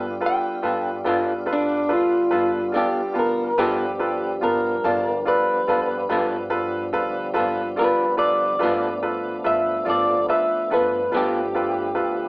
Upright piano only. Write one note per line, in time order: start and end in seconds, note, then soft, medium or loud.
0.00 0.11 F4 medium
0.00 0.11 A4 soft
0.00 0.12 B4 medium
0.21 0.53 F4 soft
0.21 0.53 A4 soft
0.21 0.53 B4 medium
0.62 0.95 F4 medium
0.62 0.95 A4 soft
0.62 0.95 B4 medium
1.04 1.37 F4 soft
1.04 1.37 A4 soft
1.04 1.37 B4 medium
1.46 1.79 F4 medium
1.46 1.79 A4 soft
1.46 1.79 B4 medium
1.89 2.21 F4 medium
1.89 2.21 A4 soft
1.89 2.21 B4 medium
2.31 2.63 F4 medium
2.31 2.63 A4 soft
2.31 2.63 B4 medium
2.72 3.05 F4 soft
2.72 3.05 A4 soft
2.72 3.05 D5 medium
3.14 3.47 B3 medium
3.14 3.46 F4 medium
3.14 3.47 A5 soft
3.58 3.89 F4 medium
3.58 3.90 A4 medium
3.58 3.90 B4 medium
3.99 4.31 F4 medium
3.99 4.31 A4 medium
3.99 4.32 B4 medium
4.41 4.74 B3 medium
4.41 4.73 F4 medium
4.41 4.74 A5 soft
4.85 5.16 F4 medium
4.85 5.16 D5 medium
4.85 5.16 A5 soft
5.25 5.57 F4 medium
5.25 5.58 A4 soft
5.25 5.58 D5 medium
5.68 5.99 F4 medium
5.68 5.99 A4 soft
5.68 6.00 B4 medium
6.09 6.41 F4 medium
6.09 6.41 A4 soft
6.09 6.41 B4 medium
6.50 6.82 F4 medium
6.50 6.83 A4 medium
6.50 6.82 B4 medium
6.93 7.25 F4 medium
6.93 7.25 A4 medium
6.93 7.25 B4 medium
7.34 7.66 F4 medium
7.34 7.66 A4 medium
7.34 7.66 B4 medium
7.76 8.08 F4 soft
7.76 8.09 A4 soft
7.76 8.09 D5 medium
8.17 8.50 F4 medium
8.17 8.50 A4 soft
8.17 8.50 B4 medium
8.59 8.92 F4 medium
8.59 8.92 A4 medium
8.59 8.92 B4 medium
9.03 9.35 F4 medium
9.03 9.34 A4 soft
9.03 9.35 B4 medium
9.44 9.76 F4 medium
9.44 9.76 A4 soft
9.44 9.76 B4 medium
9.85 10.18 F4 medium
9.85 10.18 A4 soft
9.85 10.18 D5 medium
10.28 10.60 F4 medium
10.28 10.61 A4 soft
10.28 10.61 B4 medium
10.70 11.02 F4 soft
10.70 11.03 A4 soft
10.70 11.03 B4 medium
11.12 11.44 F4 soft
11.12 11.44 A4 soft
11.12 11.44 B4 medium
11.55 11.86 F4 soft
11.55 11.86 A4 soft
11.55 11.87 B4 soft
11.95 12.27 F4 medium
11.95 12.28 A4 soft
11.95 12.27 B4 medium